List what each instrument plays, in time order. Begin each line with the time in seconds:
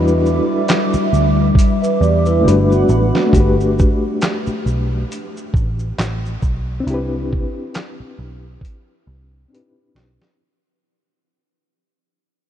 Already playing: picked electric bass E2, reed electric piano G3 D4 E4 F#4 B4, ambient pad G3 E5 D6
0.08 shaker
0.26 shaker
0.68 snare, clap, closed hi-hat, shaker
0.93 muted picked electric bass stroke, shaker
1.13 picked electric bass D2, shaker
1.55 kick, closed hi-hat, shaker
1.82 vibraphone B4 E5, shaker
2.01 picked electric bass E2, vibraphone G4 D5, shaker
2.26 vibraphone E4 B4, shaker
2.41 picked electric bass G1, reed electric piano A3 D4 F#4, vibraphone G4, ambient pad F#5 B5
2.45 reed electric piano G3 B4, vibraphone D4, closed hi-hat, shaker
2.70 vibraphone B3 F#4, shaker
2.89 picked electric bass A1, shaker
3.15 snare
3.26 reed electric piano A3 D4
3.33 picked electric bass G1, reed electric piano F#4 G4, kick, closed hi-hat, shaker
3.40 reed electric piano B4
3.61 shaker
3.79 kick, shaker
4.21 snare, clap, closed hi-hat, shaker
4.47 muted picked electric bass stroke, shaker
4.66 picked electric bass B1, shaker
5.12 closed hi-hat, shaker
5.37 shaker
5.54 picked electric bass A1, kick, shaker
5.79 shaker
5.99 picked electric bass A1, snare, clap, closed hi-hat, shaker
6.25 shaker
6.42 picked electric bass B1, kick, shaker
6.80 reed electric piano C4 D4
6.87 picked electric bass C2, reed electric piano E4 G4, closed hi-hat
6.94 reed electric piano B4
7.33 kick
7.74 snare, clap, closed hi-hat
8.00 muted picked electric bass stroke
8.19 picked electric bass B1
8.61 kick, closed hi-hat
9.07 picked electric bass C2
9.48 reed electric piano C4 D4 D#4
9.53 reed electric piano G4 B4, closed hi-hat
9.58 reed electric piano E4
9.95 picked electric bass B1, snare
10.21 snare